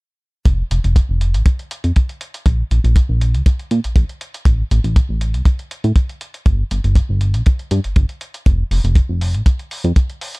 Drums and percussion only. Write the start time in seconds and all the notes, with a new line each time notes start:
0.45 kick, closed hi-hat
0.71 closed hi-hat
0.84 closed hi-hat
0.96 kick, closed hi-hat
1.21 closed hi-hat
1.34 closed hi-hat
1.46 kick, closed hi-hat
1.59 closed hi-hat
1.71 closed hi-hat
1.84 closed hi-hat
1.96 kick, closed hi-hat
2.09 closed hi-hat
2.21 closed hi-hat
2.34 closed hi-hat
2.46 kick, closed hi-hat
2.71 closed hi-hat
2.85 closed hi-hat
2.96 kick, closed hi-hat
3.21 closed hi-hat
3.35 closed hi-hat
3.46 kick, closed hi-hat
3.59 closed hi-hat
3.71 closed hi-hat
3.84 closed hi-hat
3.96 kick, closed hi-hat
4.09 closed hi-hat
4.21 closed hi-hat
4.34 closed hi-hat
4.45 kick, closed hi-hat
4.71 closed hi-hat
4.84 closed hi-hat
4.96 kick, closed hi-hat
5.21 closed hi-hat
5.34 closed hi-hat
5.45 kick, closed hi-hat
5.59 closed hi-hat
5.71 closed hi-hat
5.84 closed hi-hat
5.96 kick, closed hi-hat
6.09 closed hi-hat
6.21 closed hi-hat
6.34 closed hi-hat
6.46 kick, closed hi-hat
6.71 closed hi-hat
6.84 closed hi-hat
6.95 kick, closed hi-hat
7.21 closed hi-hat
7.34 closed hi-hat
7.46 kick, closed hi-hat
7.59 closed hi-hat
7.71 closed hi-hat
7.84 closed hi-hat
7.96 kick, closed hi-hat
8.09 closed hi-hat
8.21 closed hi-hat
8.34 closed hi-hat
8.46 kick, closed hi-hat
8.71 open hi-hat
8.85 closed hi-hat
8.95 kick, closed hi-hat
9.21 open hi-hat
9.35 closed hi-hat
9.46 kick, closed hi-hat
9.59 closed hi-hat
9.71 open hi-hat
9.85 closed hi-hat
9.96 kick, closed hi-hat
10.10 closed hi-hat
10.21 open hi-hat
10.35 closed hi-hat